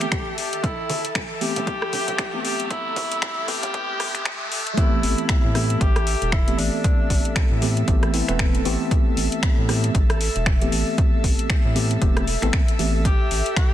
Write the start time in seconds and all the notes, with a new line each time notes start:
Already playing: G4 A4 E5 A5, riser
0.01 finger snap, closed hi-hat
0.12 finger snap, kick, closed hi-hat
0.38 G4, open hi-hat
0.53 closed hi-hat
0.64 E4, kick, closed hi-hat
0.90 open hi-hat, high conga
1.05 closed hi-hat
1.15 finger snap, kick, closed hi-hat, high conga
1.41 E3 A3 B3 C4 G4, open hi-hat
1.56 closed hi-hat, low conga
1.67 kick, closed hi-hat
1.82 cross-stick
1.92 open hi-hat, high conga, low conga
2.08 closed hi-hat, low conga
2.18 finger snap, kick, closed hi-hat
2.33 E3 A3 B3 C4 G4
2.45 G4, open hi-hat
2.60 closed hi-hat
2.70 E4, kick, closed hi-hat
2.96 kick, open hi-hat, high conga
3.11 closed hi-hat
3.22 finger snap, kick, closed hi-hat, high conga
3.48 E3 A3 B3 C4 G4, open hi-hat
3.63 closed hi-hat, low conga
3.74 E3 A3 B3 C4 G4, kick, closed hi-hat
4.00 E3 A3 B3 C4 G4, cross-stick, open hi-hat, high conga
4.15 finger snap, closed hi-hat
4.25 finger snap, kick, closed hi-hat
4.52 G4, open hi-hat
4.67 closed hi-hat
4.77 E3 A3 B3 C4 E4 G4, kick, closed hi-hat
5.03 A1, open hi-hat
5.18 closed hi-hat
5.29 E4, finger snap, kick, closed hi-hat
5.44 A2
5.55 E3 A3 B3 C4 G4, cross-stick, open hi-hat
5.70 closed hi-hat
5.81 A1 G4, kick, closed hi-hat
5.96 cross-stick, closed hi-hat
6.07 open hi-hat
6.22 E1, closed hi-hat
6.32 E4, finger snap, kick
6.47 E3 A3 B3 C4 G4, closed hi-hat
6.58 A1 D4, open hi-hat
6.84 kick, closed hi-hat
7.10 A1, kick, open hi-hat
7.25 closed hi-hat
7.36 finger snap, kick, closed hi-hat
7.51 A2
7.62 E3 A3 B3 C4 G4, open hi-hat
7.77 closed hi-hat
7.88 A1 E3 A3 B3 C4 G4, kick, closed hi-hat
8.03 cross-stick, closed hi-hat
8.13 E3 A3 B3 C4 E4, open hi-hat
8.28 E1 E3 A3 B3 C4 B4, finger snap, closed hi-hat
8.39 finger snap, kick
8.55 closed hi-hat
8.65 A1 E3 A3 B3 C4 G4, open hi-hat
8.91 kick, closed hi-hat
9.17 A1, open hi-hat
9.32 closed hi-hat
9.43 finger snap, kick, closed hi-hat
9.58 A2
9.69 E3 A3 B3 C4 G4, cross-stick, open hi-hat
9.84 closed hi-hat
9.95 A1, kick, closed hi-hat
10.10 cross-stick, closed hi-hat
10.21 open hi-hat
10.36 E1, closed hi-hat
10.46 finger snap, kick
10.61 E3 A3 B3 C4 G4, closed hi-hat
10.72 A1, open hi-hat
10.98 kick, closed hi-hat
11.24 A1, kick, open hi-hat
11.39 closed hi-hat
11.50 finger snap, kick, closed hi-hat
11.65 A2
11.75 E3 A3 B3 C4 G4, open hi-hat
11.91 closed hi-hat
12.01 E1 E3 A3 B3 C4 G4, kick, closed hi-hat
12.17 cross-stick, closed hi-hat
12.27 open hi-hat
12.42 A1 E3 A3 B3 C4 A4, finger snap, closed hi-hat
12.53 finger snap, kick
12.68 closed hi-hat
12.79 A1 E3 A3 B3 C4 G4, open hi-hat
13.05 G4, kick, closed hi-hat
13.31 A1, open hi-hat
13.46 closed hi-hat
13.56 G4, finger snap, kick, closed hi-hat